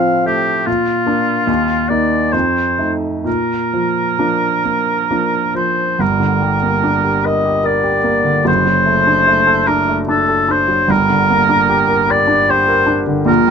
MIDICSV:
0, 0, Header, 1, 3, 480
1, 0, Start_track
1, 0, Key_signature, -2, "major"
1, 0, Tempo, 805369
1, 399, Time_signature, 3, 2, 24, 8
1, 884, Tempo, 853485
1, 1364, Tempo, 925926
1, 2804, Tempo, 895522
1, 3283, Key_signature, -2, "minor"
1, 3284, Tempo, 842697
1, 3764, Tempo, 811908
1, 5684, Tempo, 794702
1, 7740, End_track
2, 0, Start_track
2, 0, Title_t, "Oboe"
2, 0, Program_c, 0, 68
2, 0, Note_on_c, 0, 77, 65
2, 152, Note_off_c, 0, 77, 0
2, 156, Note_on_c, 0, 67, 66
2, 397, Note_on_c, 0, 65, 63
2, 406, Note_off_c, 0, 67, 0
2, 1112, Note_on_c, 0, 74, 63
2, 1120, Note_off_c, 0, 65, 0
2, 1357, Note_on_c, 0, 72, 58
2, 1365, Note_off_c, 0, 74, 0
2, 1671, Note_off_c, 0, 72, 0
2, 1841, Note_on_c, 0, 70, 60
2, 3025, Note_off_c, 0, 70, 0
2, 3044, Note_on_c, 0, 72, 57
2, 3282, Note_on_c, 0, 70, 58
2, 3291, Note_off_c, 0, 72, 0
2, 4000, Note_on_c, 0, 75, 63
2, 4009, Note_off_c, 0, 70, 0
2, 4239, Note_on_c, 0, 74, 63
2, 4247, Note_off_c, 0, 75, 0
2, 4718, Note_off_c, 0, 74, 0
2, 4721, Note_on_c, 0, 72, 78
2, 5431, Note_on_c, 0, 70, 64
2, 5440, Note_off_c, 0, 72, 0
2, 5608, Note_off_c, 0, 70, 0
2, 5682, Note_on_c, 0, 69, 66
2, 5931, Note_on_c, 0, 72, 66
2, 5940, Note_off_c, 0, 69, 0
2, 6170, Note_on_c, 0, 70, 78
2, 6179, Note_off_c, 0, 72, 0
2, 6897, Note_on_c, 0, 74, 72
2, 6906, Note_off_c, 0, 70, 0
2, 7135, Note_on_c, 0, 72, 81
2, 7144, Note_off_c, 0, 74, 0
2, 7445, Note_off_c, 0, 72, 0
2, 7602, Note_on_c, 0, 70, 90
2, 7740, Note_off_c, 0, 70, 0
2, 7740, End_track
3, 0, Start_track
3, 0, Title_t, "Grand piano"
3, 0, Program_c, 1, 0
3, 0, Control_c, 1, 64, 127
3, 0, Note_on_c, 1, 45, 60
3, 0, Note_on_c, 1, 53, 43
3, 0, Note_on_c, 1, 57, 45
3, 0, Note_on_c, 1, 60, 42
3, 0, Note_on_c, 1, 65, 47
3, 138, Note_off_c, 1, 53, 0
3, 139, Note_off_c, 1, 60, 0
3, 140, Note_off_c, 1, 65, 0
3, 155, Note_off_c, 1, 57, 0
3, 155, Note_on_c, 1, 57, 44
3, 377, Note_off_c, 1, 45, 0
3, 395, Note_off_c, 1, 57, 0
3, 398, Note_on_c, 1, 46, 51
3, 411, Control_c, 1, 64, 0
3, 495, Control_c, 1, 64, 127
3, 634, Note_on_c, 1, 58, 39
3, 638, Note_on_c, 1, 62, 43
3, 857, Note_off_c, 1, 58, 0
3, 859, Note_off_c, 1, 62, 0
3, 868, Note_off_c, 1, 46, 0
3, 876, Note_on_c, 1, 39, 56
3, 893, Control_c, 1, 64, 0
3, 979, Control_c, 1, 64, 127
3, 1119, Note_on_c, 1, 58, 38
3, 1122, Note_on_c, 1, 63, 43
3, 1341, Note_off_c, 1, 58, 0
3, 1342, Note_off_c, 1, 63, 0
3, 1346, Note_off_c, 1, 39, 0
3, 1360, Note_on_c, 1, 41, 51
3, 1373, Control_c, 1, 64, 0
3, 1473, Control_c, 1, 64, 127
3, 1597, Note_on_c, 1, 57, 35
3, 1597, Note_on_c, 1, 63, 39
3, 1821, Note_off_c, 1, 57, 0
3, 1821, Note_off_c, 1, 63, 0
3, 1826, Note_off_c, 1, 41, 0
3, 1835, Note_on_c, 1, 46, 46
3, 1854, Control_c, 1, 64, 0
3, 1967, Control_c, 1, 64, 127
3, 2089, Note_on_c, 1, 53, 36
3, 2317, Note_off_c, 1, 53, 0
3, 2325, Note_on_c, 1, 53, 36
3, 2326, Note_on_c, 1, 62, 39
3, 2328, Note_on_c, 1, 58, 37
3, 2545, Note_off_c, 1, 53, 0
3, 2545, Note_off_c, 1, 62, 0
3, 2547, Note_off_c, 1, 58, 0
3, 2562, Note_on_c, 1, 58, 33
3, 2792, Note_off_c, 1, 58, 0
3, 2800, Note_on_c, 1, 53, 36
3, 2800, Note_on_c, 1, 58, 35
3, 2801, Note_on_c, 1, 62, 37
3, 3023, Note_off_c, 1, 53, 0
3, 3023, Note_off_c, 1, 58, 0
3, 3024, Note_off_c, 1, 62, 0
3, 3035, Note_on_c, 1, 53, 36
3, 3258, Note_off_c, 1, 46, 0
3, 3271, Note_on_c, 1, 31, 48
3, 3278, Note_off_c, 1, 53, 0
3, 3280, Note_on_c, 1, 43, 47
3, 3294, Control_c, 1, 64, 0
3, 3391, Note_on_c, 1, 50, 39
3, 3394, Control_c, 1, 64, 127
3, 3512, Note_on_c, 1, 55, 40
3, 3590, Note_off_c, 1, 50, 0
3, 3634, Note_on_c, 1, 58, 37
3, 3709, Note_off_c, 1, 55, 0
3, 3754, Note_on_c, 1, 62, 44
3, 3831, Note_off_c, 1, 58, 0
3, 3874, Note_on_c, 1, 67, 41
3, 3954, Note_off_c, 1, 62, 0
3, 3994, Note_on_c, 1, 70, 42
3, 4073, Note_off_c, 1, 67, 0
3, 4117, Note_on_c, 1, 67, 42
3, 4191, Note_off_c, 1, 70, 0
3, 4229, Note_on_c, 1, 70, 45
3, 4311, Note_off_c, 1, 67, 0
3, 4344, Note_on_c, 1, 67, 42
3, 4427, Note_off_c, 1, 70, 0
3, 4465, Note_on_c, 1, 58, 43
3, 4546, Note_off_c, 1, 67, 0
3, 4584, Note_on_c, 1, 50, 38
3, 4667, Note_off_c, 1, 58, 0
3, 4694, Note_off_c, 1, 31, 0
3, 4699, Note_off_c, 1, 43, 0
3, 4707, Note_on_c, 1, 30, 52
3, 4708, Note_on_c, 1, 42, 51
3, 4715, Note_off_c, 1, 50, 0
3, 4735, Control_c, 1, 64, 0
3, 4824, Control_c, 1, 64, 127
3, 4830, Note_on_c, 1, 54, 38
3, 4949, Note_on_c, 1, 57, 42
3, 5031, Note_off_c, 1, 54, 0
3, 5074, Note_on_c, 1, 62, 38
3, 5150, Note_off_c, 1, 57, 0
3, 5192, Note_on_c, 1, 57, 46
3, 5272, Note_off_c, 1, 62, 0
3, 5312, Note_on_c, 1, 69, 46
3, 5391, Note_off_c, 1, 57, 0
3, 5434, Note_on_c, 1, 62, 47
3, 5510, Note_off_c, 1, 69, 0
3, 5555, Note_on_c, 1, 57, 44
3, 5631, Note_off_c, 1, 62, 0
3, 5675, Note_on_c, 1, 62, 48
3, 5752, Note_off_c, 1, 57, 0
3, 5798, Note_on_c, 1, 69, 44
3, 5874, Note_off_c, 1, 62, 0
3, 5917, Note_on_c, 1, 62, 46
3, 5996, Note_off_c, 1, 69, 0
3, 6034, Note_on_c, 1, 54, 41
3, 6116, Note_off_c, 1, 62, 0
3, 6136, Note_off_c, 1, 30, 0
3, 6137, Note_off_c, 1, 42, 0
3, 6152, Note_on_c, 1, 31, 51
3, 6158, Note_on_c, 1, 43, 55
3, 6162, Note_off_c, 1, 54, 0
3, 6179, Control_c, 1, 64, 0
3, 6265, Control_c, 1, 64, 127
3, 6284, Note_on_c, 1, 50, 41
3, 6410, Note_on_c, 1, 58, 46
3, 6480, Note_off_c, 1, 50, 0
3, 6525, Note_on_c, 1, 62, 43
3, 6604, Note_off_c, 1, 58, 0
3, 6645, Note_on_c, 1, 67, 50
3, 6721, Note_off_c, 1, 62, 0
3, 6764, Note_on_c, 1, 70, 46
3, 6841, Note_off_c, 1, 67, 0
3, 6882, Note_on_c, 1, 67, 51
3, 6961, Note_off_c, 1, 70, 0
3, 6997, Note_on_c, 1, 62, 47
3, 7079, Note_off_c, 1, 67, 0
3, 7125, Note_on_c, 1, 67, 54
3, 7195, Note_off_c, 1, 62, 0
3, 7243, Note_on_c, 1, 70, 50
3, 7318, Note_off_c, 1, 67, 0
3, 7354, Note_on_c, 1, 62, 50
3, 7435, Note_off_c, 1, 70, 0
3, 7478, Note_on_c, 1, 50, 45
3, 7551, Note_off_c, 1, 62, 0
3, 7573, Note_off_c, 1, 31, 0
3, 7576, Note_off_c, 1, 43, 0
3, 7588, Note_on_c, 1, 34, 55
3, 7593, Note_on_c, 1, 46, 62
3, 7601, Note_off_c, 1, 50, 0
3, 7616, Control_c, 1, 64, 0
3, 7707, Control_c, 1, 64, 127
3, 7717, Note_on_c, 1, 55, 44
3, 7740, Note_off_c, 1, 34, 0
3, 7740, Note_off_c, 1, 46, 0
3, 7740, Note_off_c, 1, 55, 0
3, 7740, End_track
0, 0, End_of_file